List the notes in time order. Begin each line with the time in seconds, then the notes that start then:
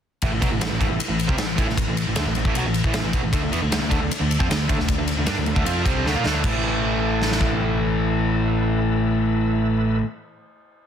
0.22 A1 A2 E3 A3 E4 B4, kick, ride
0.33 A1 A2 E3
0.42 B1 B2 F#3, kick, ride
0.52 A1 A2 E3
0.61 A1 A2 E3, snare, ride
0.71 A1 A2 E3
0.81 A1 A2 E3, kick, ride
0.90 A1 A2 E3
0.99 muted picked electric bass stroke, muted overdriven electric guitar stroke, ride
1.09 A1 A2 E3
1.19 ride
1.29 C2 C3 G3, kick
1.38 A1 A2 E3, snare, ride
1.58 A1 A2 E3, kick, ride
1.68 A1 A2 E3, snare
1.77 kick, ride
1.88 A1 A2 E3
1.97 ride
2.07 A1 A2 E3
2.16 D2 D3 A3, snare, ride
2.26 A1 A2 E3
2.35 A1 A2 E3, ride
2.45 A1 A2 E3, kick
2.54 B1 B2 F#3, ride
2.65 A1 A2 E3
2.74 ride
2.84 A1 A2 E3, kick
2.94 A1 A2 E3, snare, ride
3.04 A1 A2 E3
3.13 B1 B2 F#3, kick, ride
3.23 A1 A2 E3
3.32 D2 D3 A3 D4 A4 E5, kick, ride
3.42 D2 D3 A3
3.51 E2 E3 B3, ride
3.61 D2 D3 A3
3.70 D2 D3 A3, snare, ride
3.81 D2 D3 A3
3.91 D2 D3 A3, kick, ride
4.01 D2 D3 A3
4.10 muted overdriven electric guitar stroke, muted picked electric bass stroke, ride
4.20 D2 D3 A3
4.31 ride
4.39 F2 F3 C4, kick
4.49 D2 D3 A3, snare, ride
4.68 D2 D3 A3, kick, ride
4.78 D2 D3 A3, snare
4.88 kick, ride
4.98 D2 D3 A3
5.08 ride
5.17 D2 D3 A3
5.26 G2 G3 D4, snare, ride
5.37 D2 D3 A3
5.46 D2 D3 A3, ride
5.56 D2 D3 A3, kick
5.66 F2 F3 C4 F4, ride
5.86 C2 C3 G3 C4, kick, ride
6.05 D2 D3 A3, snare
6.15 A#2 A#3 F4
6.24 D2 D3 A3 D4, snare
6.42 A1 A2 E3 A3 E4 B4, kick, crash
6.46 A3
7.22 snare
7.32 snare
7.41 kick